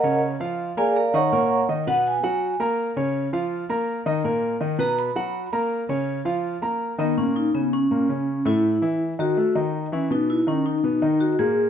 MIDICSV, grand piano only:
0, 0, Header, 1, 2, 480
1, 0, Start_track
1, 0, Key_signature, -6, "minor"
1, 0, Tempo, 366300
1, 1722, Time_signature, 4, 2, 24, 8
1, 15326, End_track
2, 0, Start_track
2, 0, Title_t, "Grand piano"
2, 0, Program_c, 0, 0
2, 44, Note_on_c, 0, 49, 78
2, 49, Note_on_c, 0, 61, 78
2, 51, Note_on_c, 0, 73, 76
2, 437, Note_off_c, 0, 49, 0
2, 440, Note_off_c, 0, 61, 0
2, 441, Note_off_c, 0, 73, 0
2, 526, Note_on_c, 0, 53, 72
2, 531, Note_on_c, 0, 65, 73
2, 533, Note_on_c, 0, 77, 77
2, 918, Note_off_c, 0, 53, 0
2, 921, Note_off_c, 0, 65, 0
2, 923, Note_off_c, 0, 77, 0
2, 1011, Note_on_c, 0, 58, 75
2, 1012, Note_on_c, 0, 70, 71
2, 1018, Note_on_c, 0, 82, 72
2, 1401, Note_off_c, 0, 58, 0
2, 1401, Note_off_c, 0, 70, 0
2, 1405, Note_off_c, 0, 82, 0
2, 1489, Note_on_c, 0, 51, 80
2, 1493, Note_on_c, 0, 63, 74
2, 1498, Note_on_c, 0, 75, 75
2, 1683, Note_off_c, 0, 51, 0
2, 1685, Note_off_c, 0, 63, 0
2, 1688, Note_off_c, 0, 75, 0
2, 1733, Note_on_c, 0, 46, 80
2, 1737, Note_on_c, 0, 58, 77
2, 1738, Note_on_c, 0, 70, 85
2, 2122, Note_off_c, 0, 46, 0
2, 2124, Note_off_c, 0, 58, 0
2, 2125, Note_off_c, 0, 70, 0
2, 2209, Note_on_c, 0, 51, 66
2, 2215, Note_on_c, 0, 63, 68
2, 2217, Note_on_c, 0, 75, 67
2, 2403, Note_off_c, 0, 51, 0
2, 2406, Note_off_c, 0, 63, 0
2, 2408, Note_off_c, 0, 75, 0
2, 2452, Note_on_c, 0, 47, 79
2, 2452, Note_on_c, 0, 59, 90
2, 2460, Note_on_c, 0, 71, 88
2, 2841, Note_off_c, 0, 47, 0
2, 2841, Note_off_c, 0, 59, 0
2, 2846, Note_off_c, 0, 71, 0
2, 2923, Note_on_c, 0, 54, 76
2, 2927, Note_on_c, 0, 66, 74
2, 2933, Note_on_c, 0, 78, 78
2, 3315, Note_off_c, 0, 54, 0
2, 3318, Note_off_c, 0, 66, 0
2, 3321, Note_off_c, 0, 78, 0
2, 3404, Note_on_c, 0, 58, 82
2, 3406, Note_on_c, 0, 70, 82
2, 3412, Note_on_c, 0, 82, 81
2, 3796, Note_off_c, 0, 58, 0
2, 3797, Note_off_c, 0, 70, 0
2, 3801, Note_off_c, 0, 82, 0
2, 3884, Note_on_c, 0, 49, 74
2, 3886, Note_on_c, 0, 61, 75
2, 3893, Note_on_c, 0, 73, 79
2, 4276, Note_off_c, 0, 49, 0
2, 4277, Note_off_c, 0, 61, 0
2, 4281, Note_off_c, 0, 73, 0
2, 4362, Note_on_c, 0, 53, 75
2, 4365, Note_on_c, 0, 65, 79
2, 4370, Note_on_c, 0, 77, 77
2, 4754, Note_off_c, 0, 53, 0
2, 4756, Note_off_c, 0, 65, 0
2, 4759, Note_off_c, 0, 77, 0
2, 4839, Note_on_c, 0, 58, 80
2, 4843, Note_on_c, 0, 70, 79
2, 4847, Note_on_c, 0, 82, 80
2, 5232, Note_off_c, 0, 58, 0
2, 5234, Note_off_c, 0, 70, 0
2, 5237, Note_off_c, 0, 82, 0
2, 5318, Note_on_c, 0, 51, 78
2, 5322, Note_on_c, 0, 63, 84
2, 5329, Note_on_c, 0, 75, 83
2, 5515, Note_off_c, 0, 51, 0
2, 5517, Note_off_c, 0, 63, 0
2, 5521, Note_off_c, 0, 75, 0
2, 5558, Note_on_c, 0, 46, 77
2, 5560, Note_on_c, 0, 58, 76
2, 5567, Note_on_c, 0, 70, 88
2, 5951, Note_off_c, 0, 46, 0
2, 5952, Note_off_c, 0, 58, 0
2, 5957, Note_off_c, 0, 70, 0
2, 6034, Note_on_c, 0, 51, 74
2, 6039, Note_on_c, 0, 63, 71
2, 6043, Note_on_c, 0, 75, 69
2, 6232, Note_off_c, 0, 51, 0
2, 6235, Note_off_c, 0, 63, 0
2, 6237, Note_off_c, 0, 75, 0
2, 6270, Note_on_c, 0, 47, 88
2, 6275, Note_on_c, 0, 59, 88
2, 6279, Note_on_c, 0, 71, 88
2, 6666, Note_off_c, 0, 47, 0
2, 6669, Note_off_c, 0, 59, 0
2, 6671, Note_off_c, 0, 71, 0
2, 6755, Note_on_c, 0, 54, 77
2, 6761, Note_on_c, 0, 66, 76
2, 6766, Note_on_c, 0, 78, 77
2, 7149, Note_off_c, 0, 54, 0
2, 7152, Note_off_c, 0, 66, 0
2, 7155, Note_off_c, 0, 78, 0
2, 7239, Note_on_c, 0, 58, 85
2, 7244, Note_on_c, 0, 70, 75
2, 7246, Note_on_c, 0, 82, 80
2, 7631, Note_off_c, 0, 58, 0
2, 7634, Note_off_c, 0, 70, 0
2, 7635, Note_off_c, 0, 82, 0
2, 7716, Note_on_c, 0, 49, 75
2, 7721, Note_on_c, 0, 61, 81
2, 7725, Note_on_c, 0, 73, 77
2, 8109, Note_off_c, 0, 49, 0
2, 8112, Note_off_c, 0, 61, 0
2, 8114, Note_off_c, 0, 73, 0
2, 8191, Note_on_c, 0, 53, 75
2, 8194, Note_on_c, 0, 65, 80
2, 8199, Note_on_c, 0, 77, 73
2, 8586, Note_off_c, 0, 53, 0
2, 8588, Note_off_c, 0, 65, 0
2, 8591, Note_off_c, 0, 77, 0
2, 8671, Note_on_c, 0, 58, 72
2, 8676, Note_on_c, 0, 70, 70
2, 8682, Note_on_c, 0, 82, 76
2, 9066, Note_off_c, 0, 58, 0
2, 9069, Note_off_c, 0, 70, 0
2, 9072, Note_off_c, 0, 82, 0
2, 9151, Note_on_c, 0, 51, 75
2, 9155, Note_on_c, 0, 63, 74
2, 9161, Note_on_c, 0, 75, 76
2, 9350, Note_off_c, 0, 51, 0
2, 9352, Note_off_c, 0, 63, 0
2, 9355, Note_off_c, 0, 75, 0
2, 9398, Note_on_c, 0, 46, 70
2, 9401, Note_on_c, 0, 58, 76
2, 9790, Note_off_c, 0, 46, 0
2, 9792, Note_off_c, 0, 58, 0
2, 9883, Note_on_c, 0, 49, 63
2, 9883, Note_on_c, 0, 61, 63
2, 10273, Note_off_c, 0, 49, 0
2, 10273, Note_off_c, 0, 61, 0
2, 10363, Note_on_c, 0, 46, 71
2, 10366, Note_on_c, 0, 58, 71
2, 10556, Note_off_c, 0, 46, 0
2, 10558, Note_off_c, 0, 58, 0
2, 10603, Note_on_c, 0, 49, 72
2, 10608, Note_on_c, 0, 61, 67
2, 10994, Note_off_c, 0, 49, 0
2, 10997, Note_off_c, 0, 61, 0
2, 11078, Note_on_c, 0, 45, 81
2, 11081, Note_on_c, 0, 57, 88
2, 11471, Note_off_c, 0, 45, 0
2, 11472, Note_off_c, 0, 57, 0
2, 11555, Note_on_c, 0, 52, 68
2, 11560, Note_on_c, 0, 64, 76
2, 11949, Note_off_c, 0, 52, 0
2, 11952, Note_off_c, 0, 64, 0
2, 12042, Note_on_c, 0, 51, 74
2, 12043, Note_on_c, 0, 63, 66
2, 12236, Note_off_c, 0, 51, 0
2, 12237, Note_off_c, 0, 63, 0
2, 12280, Note_on_c, 0, 57, 69
2, 12287, Note_on_c, 0, 69, 62
2, 12475, Note_off_c, 0, 57, 0
2, 12480, Note_off_c, 0, 69, 0
2, 12518, Note_on_c, 0, 51, 72
2, 12522, Note_on_c, 0, 63, 71
2, 12911, Note_off_c, 0, 51, 0
2, 12914, Note_off_c, 0, 63, 0
2, 13000, Note_on_c, 0, 52, 73
2, 13007, Note_on_c, 0, 64, 73
2, 13196, Note_off_c, 0, 52, 0
2, 13200, Note_off_c, 0, 64, 0
2, 13241, Note_on_c, 0, 47, 79
2, 13245, Note_on_c, 0, 59, 70
2, 13634, Note_off_c, 0, 47, 0
2, 13636, Note_off_c, 0, 59, 0
2, 13717, Note_on_c, 0, 51, 67
2, 13724, Note_on_c, 0, 63, 68
2, 14112, Note_off_c, 0, 51, 0
2, 14116, Note_off_c, 0, 63, 0
2, 14199, Note_on_c, 0, 47, 72
2, 14206, Note_on_c, 0, 59, 74
2, 14396, Note_off_c, 0, 47, 0
2, 14400, Note_off_c, 0, 59, 0
2, 14440, Note_on_c, 0, 51, 75
2, 14443, Note_on_c, 0, 63, 71
2, 14834, Note_off_c, 0, 51, 0
2, 14836, Note_off_c, 0, 63, 0
2, 14924, Note_on_c, 0, 46, 88
2, 14929, Note_on_c, 0, 58, 77
2, 15317, Note_off_c, 0, 46, 0
2, 15320, Note_off_c, 0, 58, 0
2, 15326, End_track
0, 0, End_of_file